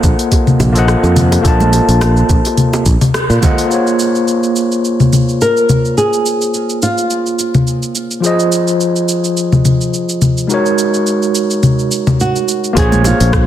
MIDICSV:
0, 0, Header, 1, 5, 480
1, 0, Start_track
1, 0, Key_signature, -5, "minor"
1, 0, Tempo, 566038
1, 1226, Time_signature, 4, 2, 24, 8
1, 11420, End_track
2, 0, Start_track
2, 0, Title_t, "Tine electric piano"
2, 0, Program_c, 0, 4
2, 0, Note_on_c, 0, 58, 91
2, 0, Note_on_c, 0, 65, 77
2, 0, Note_on_c, 0, 69, 88
2, 0, Note_on_c, 0, 72, 84
2, 0, Note_on_c, 0, 75, 79
2, 0, Note_on_c, 0, 78, 107
2, 593, Note_off_c, 0, 58, 0
2, 599, Note_off_c, 0, 65, 0
2, 604, Note_off_c, 0, 69, 0
2, 608, Note_off_c, 0, 72, 0
2, 614, Note_off_c, 0, 75, 0
2, 615, Note_on_c, 0, 58, 83
2, 620, Note_off_c, 0, 78, 0
2, 627, Note_on_c, 0, 65, 83
2, 637, Note_on_c, 0, 69, 75
2, 647, Note_on_c, 0, 72, 74
2, 657, Note_on_c, 0, 75, 80
2, 668, Note_on_c, 0, 78, 97
2, 1189, Note_off_c, 0, 58, 0
2, 1195, Note_off_c, 0, 65, 0
2, 1200, Note_off_c, 0, 69, 0
2, 1200, Note_on_c, 0, 58, 77
2, 1205, Note_off_c, 0, 72, 0
2, 1210, Note_off_c, 0, 75, 0
2, 1211, Note_on_c, 0, 65, 70
2, 1215, Note_off_c, 0, 78, 0
2, 1219, Note_on_c, 0, 69, 70
2, 1230, Note_on_c, 0, 72, 67
2, 1241, Note_on_c, 0, 75, 68
2, 1251, Note_on_c, 0, 81, 84
2, 2387, Note_off_c, 0, 58, 0
2, 2393, Note_off_c, 0, 65, 0
2, 2397, Note_off_c, 0, 69, 0
2, 2402, Note_off_c, 0, 72, 0
2, 2408, Note_off_c, 0, 75, 0
2, 2413, Note_off_c, 0, 81, 0
2, 2892, Note_on_c, 0, 58, 74
2, 2897, Note_on_c, 0, 65, 72
2, 2905, Note_on_c, 0, 69, 73
2, 2909, Note_on_c, 0, 72, 71
2, 2914, Note_on_c, 0, 75, 74
2, 2921, Note_on_c, 0, 78, 88
2, 3107, Note_off_c, 0, 58, 0
2, 3116, Note_off_c, 0, 65, 0
2, 3117, Note_on_c, 0, 58, 61
2, 3120, Note_off_c, 0, 69, 0
2, 3122, Note_off_c, 0, 72, 0
2, 3125, Note_off_c, 0, 75, 0
2, 3127, Note_on_c, 0, 65, 60
2, 3128, Note_off_c, 0, 78, 0
2, 3143, Note_on_c, 0, 68, 55
2, 3156, Note_on_c, 0, 72, 59
2, 3169, Note_on_c, 0, 73, 66
2, 6946, Note_off_c, 0, 58, 0
2, 6951, Note_off_c, 0, 65, 0
2, 6957, Note_on_c, 0, 53, 65
2, 6959, Note_off_c, 0, 68, 0
2, 6965, Note_off_c, 0, 72, 0
2, 6971, Note_on_c, 0, 65, 59
2, 6972, Note_off_c, 0, 73, 0
2, 6983, Note_on_c, 0, 68, 58
2, 6998, Note_on_c, 0, 72, 60
2, 7009, Note_on_c, 0, 75, 74
2, 8866, Note_off_c, 0, 53, 0
2, 8873, Note_off_c, 0, 65, 0
2, 8879, Note_off_c, 0, 68, 0
2, 8882, Note_on_c, 0, 56, 66
2, 8886, Note_off_c, 0, 72, 0
2, 8892, Note_off_c, 0, 75, 0
2, 8894, Note_on_c, 0, 63, 63
2, 8908, Note_on_c, 0, 66, 61
2, 8919, Note_on_c, 0, 70, 60
2, 8936, Note_on_c, 0, 73, 73
2, 10788, Note_off_c, 0, 56, 0
2, 10794, Note_off_c, 0, 63, 0
2, 10796, Note_on_c, 0, 58, 93
2, 10801, Note_off_c, 0, 66, 0
2, 10807, Note_off_c, 0, 70, 0
2, 10811, Note_on_c, 0, 65, 89
2, 10815, Note_off_c, 0, 73, 0
2, 10823, Note_on_c, 0, 68, 86
2, 10836, Note_on_c, 0, 72, 82
2, 10851, Note_on_c, 0, 73, 104
2, 11420, Note_off_c, 0, 58, 0
2, 11420, Note_off_c, 0, 65, 0
2, 11420, Note_off_c, 0, 68, 0
2, 11420, Note_off_c, 0, 72, 0
2, 11420, Note_off_c, 0, 73, 0
2, 11420, End_track
3, 0, Start_track
3, 0, Title_t, "Nylon-string guitar"
3, 0, Program_c, 1, 24
3, 4594, Note_on_c, 1, 70, 89
3, 5037, Note_off_c, 1, 70, 0
3, 5067, Note_on_c, 1, 68, 82
3, 5786, Note_off_c, 1, 68, 0
3, 5790, Note_on_c, 1, 65, 78
3, 6714, Note_off_c, 1, 65, 0
3, 10353, Note_on_c, 1, 66, 79
3, 10833, Note_off_c, 1, 66, 0
3, 10836, Note_on_c, 1, 68, 93
3, 11055, Note_off_c, 1, 68, 0
3, 11080, Note_on_c, 1, 65, 85
3, 11420, Note_off_c, 1, 65, 0
3, 11420, End_track
4, 0, Start_track
4, 0, Title_t, "Fretless electric bass"
4, 0, Program_c, 2, 35
4, 29, Note_on_c, 2, 34, 99
4, 109, Note_off_c, 2, 34, 0
4, 506, Note_on_c, 2, 34, 81
4, 797, Note_off_c, 2, 34, 0
4, 876, Note_on_c, 2, 41, 97
4, 1159, Note_off_c, 2, 41, 0
4, 1228, Note_on_c, 2, 34, 100
4, 1518, Note_off_c, 2, 34, 0
4, 1598, Note_on_c, 2, 34, 88
4, 1880, Note_off_c, 2, 34, 0
4, 1946, Note_on_c, 2, 34, 100
4, 2027, Note_off_c, 2, 34, 0
4, 2425, Note_on_c, 2, 34, 87
4, 2507, Note_off_c, 2, 34, 0
4, 2796, Note_on_c, 2, 46, 88
4, 2864, Note_off_c, 2, 46, 0
4, 10825, Note_on_c, 2, 34, 94
4, 11116, Note_off_c, 2, 34, 0
4, 11198, Note_on_c, 2, 34, 90
4, 11420, Note_off_c, 2, 34, 0
4, 11420, End_track
5, 0, Start_track
5, 0, Title_t, "Drums"
5, 29, Note_on_c, 9, 36, 91
5, 29, Note_on_c, 9, 46, 31
5, 30, Note_on_c, 9, 82, 76
5, 113, Note_off_c, 9, 46, 0
5, 114, Note_off_c, 9, 36, 0
5, 115, Note_off_c, 9, 82, 0
5, 162, Note_on_c, 9, 46, 46
5, 163, Note_on_c, 9, 82, 30
5, 247, Note_off_c, 9, 46, 0
5, 248, Note_off_c, 9, 82, 0
5, 268, Note_on_c, 9, 46, 57
5, 269, Note_on_c, 9, 36, 55
5, 270, Note_on_c, 9, 82, 43
5, 277, Note_on_c, 9, 60, 51
5, 353, Note_off_c, 9, 46, 0
5, 354, Note_off_c, 9, 36, 0
5, 355, Note_off_c, 9, 82, 0
5, 362, Note_off_c, 9, 60, 0
5, 401, Note_on_c, 9, 64, 63
5, 402, Note_on_c, 9, 82, 27
5, 485, Note_off_c, 9, 64, 0
5, 487, Note_off_c, 9, 82, 0
5, 509, Note_on_c, 9, 60, 74
5, 510, Note_on_c, 9, 46, 31
5, 510, Note_on_c, 9, 64, 60
5, 512, Note_on_c, 9, 82, 75
5, 594, Note_off_c, 9, 60, 0
5, 595, Note_off_c, 9, 46, 0
5, 595, Note_off_c, 9, 64, 0
5, 596, Note_off_c, 9, 82, 0
5, 640, Note_on_c, 9, 46, 41
5, 642, Note_on_c, 9, 82, 31
5, 725, Note_off_c, 9, 46, 0
5, 726, Note_off_c, 9, 82, 0
5, 748, Note_on_c, 9, 37, 90
5, 750, Note_on_c, 9, 82, 39
5, 833, Note_off_c, 9, 37, 0
5, 835, Note_off_c, 9, 82, 0
5, 882, Note_on_c, 9, 82, 28
5, 883, Note_on_c, 9, 60, 52
5, 966, Note_off_c, 9, 82, 0
5, 967, Note_off_c, 9, 60, 0
5, 987, Note_on_c, 9, 64, 72
5, 988, Note_off_c, 9, 64, 0
5, 988, Note_on_c, 9, 46, 52
5, 988, Note_on_c, 9, 64, 65
5, 989, Note_on_c, 9, 63, 57
5, 989, Note_on_c, 9, 82, 70
5, 1072, Note_off_c, 9, 46, 0
5, 1072, Note_off_c, 9, 64, 0
5, 1073, Note_off_c, 9, 63, 0
5, 1074, Note_off_c, 9, 82, 0
5, 1120, Note_on_c, 9, 60, 74
5, 1121, Note_on_c, 9, 46, 47
5, 1122, Note_on_c, 9, 82, 31
5, 1205, Note_off_c, 9, 60, 0
5, 1206, Note_off_c, 9, 46, 0
5, 1207, Note_off_c, 9, 82, 0
5, 1228, Note_on_c, 9, 36, 108
5, 1229, Note_on_c, 9, 46, 59
5, 1230, Note_on_c, 9, 82, 42
5, 1313, Note_off_c, 9, 36, 0
5, 1313, Note_off_c, 9, 46, 0
5, 1315, Note_off_c, 9, 82, 0
5, 1361, Note_on_c, 9, 63, 93
5, 1361, Note_on_c, 9, 82, 29
5, 1446, Note_off_c, 9, 63, 0
5, 1446, Note_off_c, 9, 82, 0
5, 1466, Note_on_c, 9, 46, 57
5, 1468, Note_on_c, 9, 82, 70
5, 1470, Note_on_c, 9, 60, 54
5, 1551, Note_off_c, 9, 46, 0
5, 1552, Note_off_c, 9, 82, 0
5, 1555, Note_off_c, 9, 60, 0
5, 1600, Note_on_c, 9, 46, 47
5, 1601, Note_on_c, 9, 82, 33
5, 1685, Note_off_c, 9, 46, 0
5, 1686, Note_off_c, 9, 82, 0
5, 1707, Note_on_c, 9, 37, 103
5, 1707, Note_on_c, 9, 46, 62
5, 1709, Note_on_c, 9, 82, 45
5, 1713, Note_on_c, 9, 60, 81
5, 1792, Note_off_c, 9, 37, 0
5, 1792, Note_off_c, 9, 46, 0
5, 1794, Note_off_c, 9, 82, 0
5, 1798, Note_off_c, 9, 60, 0
5, 1838, Note_on_c, 9, 82, 26
5, 1923, Note_off_c, 9, 82, 0
5, 1946, Note_on_c, 9, 36, 107
5, 1946, Note_on_c, 9, 46, 29
5, 1947, Note_on_c, 9, 82, 72
5, 2030, Note_off_c, 9, 46, 0
5, 2031, Note_off_c, 9, 36, 0
5, 2032, Note_off_c, 9, 82, 0
5, 2078, Note_on_c, 9, 46, 47
5, 2079, Note_on_c, 9, 82, 32
5, 2091, Note_on_c, 9, 60, 47
5, 2163, Note_off_c, 9, 46, 0
5, 2164, Note_off_c, 9, 82, 0
5, 2176, Note_off_c, 9, 60, 0
5, 2184, Note_on_c, 9, 46, 58
5, 2184, Note_on_c, 9, 64, 62
5, 2185, Note_on_c, 9, 82, 41
5, 2268, Note_off_c, 9, 46, 0
5, 2268, Note_off_c, 9, 64, 0
5, 2270, Note_off_c, 9, 82, 0
5, 2317, Note_on_c, 9, 82, 27
5, 2319, Note_on_c, 9, 60, 82
5, 2402, Note_off_c, 9, 82, 0
5, 2403, Note_off_c, 9, 60, 0
5, 2423, Note_on_c, 9, 46, 34
5, 2424, Note_on_c, 9, 82, 79
5, 2426, Note_on_c, 9, 36, 57
5, 2508, Note_off_c, 9, 46, 0
5, 2509, Note_off_c, 9, 82, 0
5, 2511, Note_off_c, 9, 36, 0
5, 2556, Note_on_c, 9, 46, 44
5, 2556, Note_on_c, 9, 64, 76
5, 2557, Note_on_c, 9, 82, 31
5, 2640, Note_off_c, 9, 46, 0
5, 2640, Note_off_c, 9, 64, 0
5, 2642, Note_off_c, 9, 82, 0
5, 2665, Note_on_c, 9, 37, 87
5, 2665, Note_on_c, 9, 46, 30
5, 2666, Note_on_c, 9, 60, 56
5, 2667, Note_on_c, 9, 82, 40
5, 2750, Note_off_c, 9, 37, 0
5, 2750, Note_off_c, 9, 46, 0
5, 2751, Note_off_c, 9, 60, 0
5, 2751, Note_off_c, 9, 82, 0
5, 2800, Note_on_c, 9, 82, 29
5, 2884, Note_off_c, 9, 82, 0
5, 2905, Note_on_c, 9, 36, 94
5, 2906, Note_on_c, 9, 46, 52
5, 2906, Note_on_c, 9, 63, 62
5, 2908, Note_on_c, 9, 82, 74
5, 2909, Note_on_c, 9, 60, 72
5, 2913, Note_on_c, 9, 64, 76
5, 2990, Note_off_c, 9, 36, 0
5, 2990, Note_off_c, 9, 63, 0
5, 2991, Note_off_c, 9, 46, 0
5, 2992, Note_off_c, 9, 82, 0
5, 2994, Note_off_c, 9, 60, 0
5, 2998, Note_off_c, 9, 64, 0
5, 3038, Note_on_c, 9, 46, 44
5, 3040, Note_on_c, 9, 82, 31
5, 3123, Note_off_c, 9, 46, 0
5, 3125, Note_off_c, 9, 82, 0
5, 3148, Note_on_c, 9, 82, 36
5, 3233, Note_off_c, 9, 82, 0
5, 3281, Note_on_c, 9, 82, 27
5, 3366, Note_off_c, 9, 82, 0
5, 3388, Note_on_c, 9, 82, 68
5, 3472, Note_off_c, 9, 82, 0
5, 3520, Note_on_c, 9, 82, 28
5, 3605, Note_off_c, 9, 82, 0
5, 3629, Note_on_c, 9, 82, 38
5, 3714, Note_off_c, 9, 82, 0
5, 3760, Note_on_c, 9, 82, 23
5, 3845, Note_off_c, 9, 82, 0
5, 3867, Note_on_c, 9, 82, 65
5, 3952, Note_off_c, 9, 82, 0
5, 4001, Note_on_c, 9, 82, 25
5, 4085, Note_off_c, 9, 82, 0
5, 4110, Note_on_c, 9, 82, 38
5, 4194, Note_off_c, 9, 82, 0
5, 4241, Note_on_c, 9, 64, 47
5, 4242, Note_on_c, 9, 82, 25
5, 4326, Note_off_c, 9, 64, 0
5, 4327, Note_off_c, 9, 82, 0
5, 4349, Note_on_c, 9, 64, 54
5, 4350, Note_on_c, 9, 82, 65
5, 4433, Note_off_c, 9, 64, 0
5, 4435, Note_off_c, 9, 82, 0
5, 4483, Note_on_c, 9, 82, 28
5, 4568, Note_off_c, 9, 82, 0
5, 4591, Note_on_c, 9, 82, 35
5, 4676, Note_off_c, 9, 82, 0
5, 4722, Note_on_c, 9, 82, 26
5, 4806, Note_off_c, 9, 82, 0
5, 4829, Note_on_c, 9, 64, 50
5, 4830, Note_on_c, 9, 82, 64
5, 4913, Note_off_c, 9, 64, 0
5, 4915, Note_off_c, 9, 82, 0
5, 4961, Note_on_c, 9, 82, 28
5, 5046, Note_off_c, 9, 82, 0
5, 5070, Note_on_c, 9, 82, 41
5, 5155, Note_off_c, 9, 82, 0
5, 5201, Note_on_c, 9, 82, 27
5, 5286, Note_off_c, 9, 82, 0
5, 5309, Note_on_c, 9, 82, 66
5, 5394, Note_off_c, 9, 82, 0
5, 5440, Note_on_c, 9, 82, 29
5, 5525, Note_off_c, 9, 82, 0
5, 5547, Note_on_c, 9, 82, 41
5, 5631, Note_off_c, 9, 82, 0
5, 5679, Note_on_c, 9, 82, 25
5, 5764, Note_off_c, 9, 82, 0
5, 5787, Note_on_c, 9, 82, 66
5, 5871, Note_off_c, 9, 82, 0
5, 5919, Note_on_c, 9, 82, 29
5, 6004, Note_off_c, 9, 82, 0
5, 6026, Note_on_c, 9, 82, 40
5, 6111, Note_off_c, 9, 82, 0
5, 6159, Note_on_c, 9, 82, 27
5, 6244, Note_off_c, 9, 82, 0
5, 6268, Note_on_c, 9, 82, 68
5, 6353, Note_off_c, 9, 82, 0
5, 6399, Note_on_c, 9, 64, 61
5, 6400, Note_on_c, 9, 82, 27
5, 6484, Note_off_c, 9, 64, 0
5, 6485, Note_off_c, 9, 82, 0
5, 6507, Note_on_c, 9, 82, 35
5, 6592, Note_off_c, 9, 82, 0
5, 6637, Note_on_c, 9, 82, 27
5, 6722, Note_off_c, 9, 82, 0
5, 6745, Note_on_c, 9, 82, 71
5, 6830, Note_off_c, 9, 82, 0
5, 6877, Note_on_c, 9, 82, 29
5, 6962, Note_off_c, 9, 82, 0
5, 6988, Note_on_c, 9, 82, 41
5, 7073, Note_off_c, 9, 82, 0
5, 7120, Note_on_c, 9, 82, 29
5, 7205, Note_off_c, 9, 82, 0
5, 7226, Note_on_c, 9, 82, 69
5, 7311, Note_off_c, 9, 82, 0
5, 7358, Note_on_c, 9, 82, 31
5, 7443, Note_off_c, 9, 82, 0
5, 7467, Note_on_c, 9, 82, 41
5, 7552, Note_off_c, 9, 82, 0
5, 7599, Note_on_c, 9, 82, 28
5, 7683, Note_off_c, 9, 82, 0
5, 7705, Note_on_c, 9, 82, 70
5, 7790, Note_off_c, 9, 82, 0
5, 7839, Note_on_c, 9, 82, 28
5, 7923, Note_off_c, 9, 82, 0
5, 7946, Note_on_c, 9, 82, 42
5, 8031, Note_off_c, 9, 82, 0
5, 8077, Note_on_c, 9, 64, 46
5, 8078, Note_on_c, 9, 82, 27
5, 8162, Note_off_c, 9, 64, 0
5, 8163, Note_off_c, 9, 82, 0
5, 8184, Note_on_c, 9, 64, 52
5, 8185, Note_on_c, 9, 82, 69
5, 8269, Note_off_c, 9, 64, 0
5, 8270, Note_off_c, 9, 82, 0
5, 8319, Note_on_c, 9, 82, 28
5, 8404, Note_off_c, 9, 82, 0
5, 8426, Note_on_c, 9, 82, 41
5, 8511, Note_off_c, 9, 82, 0
5, 8557, Note_on_c, 9, 82, 26
5, 8642, Note_off_c, 9, 82, 0
5, 8664, Note_on_c, 9, 64, 47
5, 8665, Note_on_c, 9, 82, 74
5, 8749, Note_off_c, 9, 64, 0
5, 8750, Note_off_c, 9, 82, 0
5, 8799, Note_on_c, 9, 82, 31
5, 8883, Note_off_c, 9, 82, 0
5, 8904, Note_on_c, 9, 82, 43
5, 8989, Note_off_c, 9, 82, 0
5, 9037, Note_on_c, 9, 82, 29
5, 9122, Note_off_c, 9, 82, 0
5, 9146, Note_on_c, 9, 82, 73
5, 9231, Note_off_c, 9, 82, 0
5, 9277, Note_on_c, 9, 82, 31
5, 9362, Note_off_c, 9, 82, 0
5, 9386, Note_on_c, 9, 82, 41
5, 9471, Note_off_c, 9, 82, 0
5, 9518, Note_on_c, 9, 82, 28
5, 9603, Note_off_c, 9, 82, 0
5, 9625, Note_on_c, 9, 82, 72
5, 9710, Note_off_c, 9, 82, 0
5, 9758, Note_on_c, 9, 82, 30
5, 9842, Note_off_c, 9, 82, 0
5, 9863, Note_on_c, 9, 64, 55
5, 9864, Note_on_c, 9, 82, 43
5, 9948, Note_off_c, 9, 64, 0
5, 9949, Note_off_c, 9, 82, 0
5, 9998, Note_on_c, 9, 82, 26
5, 10083, Note_off_c, 9, 82, 0
5, 10105, Note_on_c, 9, 82, 73
5, 10189, Note_off_c, 9, 82, 0
5, 10236, Note_on_c, 9, 64, 69
5, 10238, Note_on_c, 9, 82, 30
5, 10321, Note_off_c, 9, 64, 0
5, 10323, Note_off_c, 9, 82, 0
5, 10347, Note_on_c, 9, 82, 37
5, 10432, Note_off_c, 9, 82, 0
5, 10481, Note_on_c, 9, 82, 29
5, 10565, Note_off_c, 9, 82, 0
5, 10587, Note_on_c, 9, 82, 71
5, 10672, Note_off_c, 9, 82, 0
5, 10720, Note_on_c, 9, 82, 29
5, 10805, Note_off_c, 9, 82, 0
5, 10825, Note_on_c, 9, 60, 55
5, 10826, Note_on_c, 9, 36, 105
5, 10827, Note_on_c, 9, 46, 62
5, 10828, Note_on_c, 9, 82, 46
5, 10910, Note_off_c, 9, 60, 0
5, 10911, Note_off_c, 9, 36, 0
5, 10912, Note_off_c, 9, 46, 0
5, 10913, Note_off_c, 9, 82, 0
5, 10958, Note_on_c, 9, 63, 90
5, 10961, Note_on_c, 9, 82, 32
5, 11042, Note_off_c, 9, 63, 0
5, 11046, Note_off_c, 9, 82, 0
5, 11061, Note_on_c, 9, 60, 85
5, 11068, Note_on_c, 9, 46, 33
5, 11069, Note_on_c, 9, 82, 78
5, 11146, Note_off_c, 9, 60, 0
5, 11152, Note_off_c, 9, 46, 0
5, 11154, Note_off_c, 9, 82, 0
5, 11198, Note_on_c, 9, 46, 46
5, 11199, Note_on_c, 9, 82, 33
5, 11283, Note_off_c, 9, 46, 0
5, 11284, Note_off_c, 9, 82, 0
5, 11305, Note_on_c, 9, 37, 115
5, 11306, Note_on_c, 9, 36, 103
5, 11306, Note_on_c, 9, 82, 47
5, 11389, Note_off_c, 9, 37, 0
5, 11391, Note_off_c, 9, 36, 0
5, 11391, Note_off_c, 9, 82, 0
5, 11420, End_track
0, 0, End_of_file